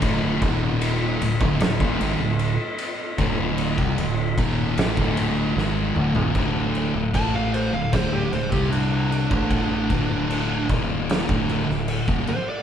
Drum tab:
CC |----------------|----------------|x-x-x-x-x-x-x-x-|x-x-x-x-x-x-x-x-|
RD |x-x-x-x-x-x-x-x-|x-x-x-x-x-x-----|----------------|----------------|
SD |--------o-------|--------o---o---|--------o--o----|--------o--o----|
T2 |----------------|--------------o-|----------------|----------------|
FT |----------------|---------------o|----------------|----------------|
BD |o-o----o-o------|o--o--o--o------|o---o---o--o---o|o-o---o--o---o--|